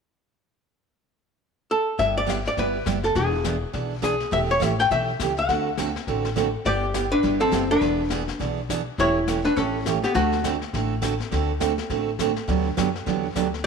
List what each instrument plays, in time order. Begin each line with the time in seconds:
1.71 hollow-body jazz guitar A4
1.99 upright bass G1, steel-string acoustic guitar G3 B3 E4 G4, hollow-body jazz guitar E5, brush sweep, kick, snare
2.18 hollow-body jazz guitar D5
2.26 steel-string acoustic guitar G3 B3 E4 G4, hollow-body jazz guitar E5, kick, snare, hi-hat pedal
2.45 hollow-body jazz guitar D5, snare
2.57 upright bass G1, steel-string acoustic guitar G3 B3 E4 G4, hollow-body jazz guitar B4, brush sweep, kick, snare
2.86 upright bass F#1, steel-string acoustic guitar G3 B3 E4 G4, kick, snare, hi-hat pedal
3.03 hollow-body jazz guitar A4, snare
3.15 upright bass E1, steel-string acoustic guitar E3 B3 D4 G#4, hollow-body jazz guitar G#4, brush sweep, kick, snare
3.44 steel-string acoustic guitar E3 B3 D4 G#4, kick, snare, hi-hat pedal
3.73 upright bass B1, steel-string acoustic guitar E3 B3 D4 G#4, brush sweep, kick, snare
4.02 steel-string acoustic guitar E3 B3 D4 G#4, hollow-body jazz guitar G#4, kick, snare, hi-hat pedal
4.20 snare
4.31 upright bass E1, steel-string acoustic guitar E3 A3 C#4 G4, hollow-body jazz guitar E5, brush sweep, kick, snare
4.51 hollow-body jazz guitar C#5
4.60 upright bass A1, steel-string acoustic guitar E3 A3 C#4 G4, hollow-body jazz guitar E5, kick, snare, hi-hat pedal
4.79 hollow-body jazz guitar G5, snare
4.91 upright bass B1, steel-string acoustic guitar E3 A3 C#4 G4, hollow-body jazz guitar E5, brush sweep, kick, snare
5.20 upright bass C#2, steel-string acoustic guitar E3 A3 C#4 G4, kick, snare, hi-hat pedal
5.37 hollow-body jazz guitar F#5, snare
5.49 upright bass D2, steel-string acoustic guitar D3 A3 C4 F#4 A4, brush sweep, kick, snare
5.77 steel-string acoustic guitar D3 A3 C4 F#4 A4, kick, snare, hi-hat pedal
5.96 snare
6.05 upright bass A1, steel-string acoustic guitar D3 A3 C4, hollow-body jazz guitar E5, brush sweep, kick, snare
6.09 steel-string acoustic guitar F#4 A4
6.25 snare
6.36 steel-string acoustic guitar D3 A3 C4 F#4 A4, kick, snare, hi-hat pedal
6.65 upright bass G1, steel-string acoustic guitar G3 B3 E4 G4, hollow-body jazz guitar G4 D5, brush sweep, kick, snare
6.94 steel-string acoustic guitar G3 B3 E4 G4, kick, snare, hi-hat pedal
7.12 hollow-body jazz guitar D4 B4
7.23 upright bass G1, steel-string acoustic guitar G3 B3 E4 G4, brush sweep, kick, snare
7.41 hollow-body jazz guitar C4 A4
7.51 upright bass F#1, steel-string acoustic guitar G3 B3 E4 G4, kick, snare, hi-hat pedal
7.71 hollow-body jazz guitar D4 B4
7.81 upright bass E1, steel-string acoustic guitar E3 B3 D4 G#4, brush sweep, kick, snare
8.10 steel-string acoustic guitar E3 B3 D4 G#4, kick, snare, hi-hat pedal
8.28 snare
8.39 upright bass B1, steel-string acoustic guitar E3 B3 D4 G#4, brush sweep, kick, snare
8.69 steel-string acoustic guitar E3 B3 D4 G#4, kick, snare, hi-hat pedal
8.98 upright bass E1, steel-string acoustic guitar E3 A3 C#4 G4, hollow-body jazz guitar E4 C#5, brush sweep, kick, snare
9.28 steel-string acoustic guitar E3 A3 C#4 G4, kick, snare, hi-hat pedal
9.45 hollow-body jazz guitar D4 B4, snare
9.56 upright bass A1, steel-string acoustic guitar E3 A3 C#4 G4, hollow-body jazz guitar C#4 A4, brush sweep, kick, snare
9.86 steel-string acoustic guitar E3 A3 C#4 G4, kick, snare, hi-hat pedal
10.04 hollow-body jazz guitar B3 G4, snare
10.15 upright bass D2, steel-string acoustic guitar D3 A3 C4 F#4 A4, hollow-body jazz guitar A3 F#4, brush sweep, kick, snare
10.32 snare
10.44 steel-string acoustic guitar D3 A3 C4 F#4 A4, kick, snare, hi-hat pedal
10.62 snare
10.73 upright bass A1, steel-string acoustic guitar D3 A3 C4 F#4 A4, brush sweep, kick, snare
11.02 steel-string acoustic guitar D3 A3 C4 F#4 A4, kick, snare, hi-hat pedal
11.20 snare
11.31 upright bass D2, steel-string acoustic guitar D3 A3 C4 F#4 A4, brush sweep, kick, snare
11.60 steel-string acoustic guitar D3 A3 C4 F#4 A4, kick, snare, hi-hat pedal
11.78 snare
11.90 upright bass A1, steel-string acoustic guitar D3 A3 C4 F#4 A4, brush sweep, kick, snare
12.19 steel-string acoustic guitar D3 A3 C4 F#4 A4, kick, snare, hi-hat pedal
12.36 snare
12.48 upright bass D2, steel-string acoustic guitar D3 F#3 B3 D4 G4, brush sweep, kick, snare
12.77 upright bass F#2, steel-string acoustic guitar D3 F#3 B3 D4 G4, kick, snare, hi-hat pedal
12.95 snare
13.06 upright bass E2, steel-string acoustic guitar D3 F#3 B3 D4 G4, brush sweep, kick, snare
13.35 upright bass D2, steel-string acoustic guitar D3 F#3 B3 D4 G4, kick, snare, hi-hat pedal
13.54 snare